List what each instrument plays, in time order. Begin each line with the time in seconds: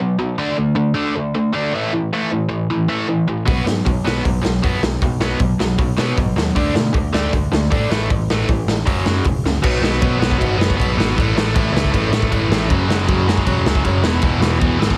0.00 overdriven electric guitar B2 F#3
0.19 overdriven electric guitar B2 F#3
0.38 overdriven electric guitar D3 A3 D4
0.57 overdriven electric guitar D3 A3
0.75 overdriven electric guitar D3 A3
0.94 overdriven electric guitar D3 A3 D4
1.15 overdriven electric guitar D3 A3
1.35 overdriven electric guitar D3 A3
1.53 overdriven electric guitar D3 A3 D4
1.74 overdriven electric guitar A2 E3 A3
1.92 overdriven electric guitar A2 E3
2.13 overdriven electric guitar A2 E3 A3
2.31 overdriven electric guitar A2 E3
2.49 overdriven electric guitar A2 E3
2.70 overdriven electric guitar A2 E3
2.89 overdriven electric guitar A2 E3 A3
3.08 overdriven electric guitar A2 E3
3.28 overdriven electric guitar A2 E3
3.46 picked electric bass B1, overdriven electric guitar B2 F#3 B3, kick, open hi-hat
3.65 picked electric bass G#2, overdriven electric guitar B2 F#3, snare
3.85 picked electric bass B1, overdriven electric guitar B2 F#3, kick, open hi-hat
4.04 picked electric bass B1, overdriven electric guitar B2 F#3 B3, snare
4.24 picked electric bass B1, overdriven electric guitar B2 F#3, kick, open hi-hat
4.42 picked electric bass B1, overdriven electric guitar B2 F#3, snare
4.62 picked electric bass F#2, overdriven electric guitar B2 F#3 B3, kick, open hi-hat
4.82 picked electric bass B1, overdriven electric guitar B2 F#3, snare
5.02 picked electric bass B1, overdriven electric guitar B2 F#3, kick, open hi-hat
5.20 picked electric bass B1, overdriven electric guitar B2 F#3 B3, snare
5.39 picked electric bass B1, overdriven electric guitar B2 F#3, kick, open hi-hat
5.59 picked electric bass B1, overdriven electric guitar B2 F#3, snare
5.78 picked electric bass B1, overdriven electric guitar B2 F#3, kick, open hi-hat
5.97 overdriven electric guitar B2 F#3 B3, picked electric bass B2, snare
6.17 picked electric bass G#1, overdriven electric guitar B2 F#3, kick, open hi-hat
6.36 picked electric bass D#2, overdriven electric guitar B2 F#3, snare
6.55 picked electric bass D2, overdriven electric guitar D3 A3 D4, kick, open hi-hat
6.75 picked electric bass B2, overdriven electric guitar D3 A3, snare
6.93 picked electric bass D2, overdriven electric guitar D3 A3, kick, open hi-hat
7.13 picked electric bass D2, overdriven electric guitar D3 A3 D4, snare
7.33 picked electric bass D2, overdriven electric guitar D3 A3, kick, open hi-hat
7.52 picked electric bass D2, overdriven electric guitar D3 A3, snare
7.70 picked electric bass A2, overdriven electric guitar D3 A3 D4, kick, open hi-hat
7.91 picked electric bass A1, overdriven electric guitar A2 E3 A3, snare
8.10 picked electric bass A1, overdriven electric guitar A2 E3, kick, open hi-hat
8.29 picked electric bass A1, overdriven electric guitar A2 E3 A3, snare
8.49 picked electric bass A1, overdriven electric guitar A2 E3, kick, open hi-hat
8.67 picked electric bass A1, overdriven electric guitar A2 E3, snare
8.86 picked electric bass F#1, overdriven electric guitar F#2 C#3 F#3, kick, open hi-hat
9.06 overdriven electric guitar F#2 C#3 F#3, picked electric bass F#2, snare
9.24 picked electric bass E1, overdriven electric guitar F#2 C#3, kick, open hi-hat
9.44 picked electric bass C#2, overdriven electric guitar F#2 C#3, snare
9.63 picked electric bass B1, overdriven electric guitar B2 F#3 B3, kick, crash
9.82 picked electric bass B1, overdriven electric guitar B2 F#3 B3, snare
10.01 overdriven electric guitar B2 F#3 B3, picked electric bass B2, kick, crash
10.18 picked electric bass B1, overdriven electric guitar B2 F#3 B3
10.22 snare
10.31 kick
10.38 picked electric bass G#1, overdriven electric guitar B2 F#3 B3, kick, crash
10.57 picked electric bass F#1, overdriven electric guitar B2 F#3 B3, snare
10.70 kick
10.76 overdriven electric guitar B2 F#3 B3, kick
10.80 picked electric bass B1, crash
10.97 picked electric bass G#1, overdriven electric guitar B2 F#3 B3, snare
11.16 picked electric bass A1, overdriven electric guitar A2 E3 A3, kick, crash
11.35 picked electric bass A1, overdriven electric guitar A2 E3 A3, snare
11.54 picked electric bass A1, overdriven electric guitar A2 E3 A3, kick, crash
11.72 picked electric bass C#2, overdriven electric guitar A2 E3 A3
11.76 snare
11.84 kick
11.92 picked electric bass A1, overdriven electric guitar A2 E3 A3, kick, crash
12.11 picked electric bass A1, overdriven electric guitar A2 E3 A3, snare
12.22 kick
12.31 picked electric bass A1, overdriven electric guitar A2 E3 A3, kick, crash
12.50 picked electric bass A1, overdriven electric guitar A2 E3 A3, snare
12.69 picked electric bass F#1, overdriven electric guitar F#2 C#3 F#3, kick, crash
12.88 picked electric bass F#1, overdriven electric guitar F#2 C#3 F#3, snare
13.07 overdriven electric guitar F#2 C#3 F#3, picked electric bass F#2, kick, crash
13.27 picked electric bass F#1, overdriven electric guitar F#2 C#3 F#3, snare
13.38 kick
13.46 picked electric bass E1, overdriven electric guitar F#2 C#3 F#3, kick, crash
13.66 picked electric bass C#2, overdriven electric guitar F#2 C#3 F#3, snare
13.75 kick
13.84 picked electric bass F#1, overdriven electric guitar F#2 C#3 F#3, kick, crash
14.03 picked electric bass E1, overdriven electric guitar E2 B2 E3, snare
14.22 picked electric bass E1, overdriven electric guitar E2 B2 E3, kick, crash
14.40 picked electric bass E1, overdriven electric guitar E2 B2 E3, snare
14.59 picked electric bass E1, overdriven electric guitar E2 B2 E3, kick, crash
14.79 picked electric bass G#1, overdriven electric guitar E2 B2 E3, snare
14.90 kick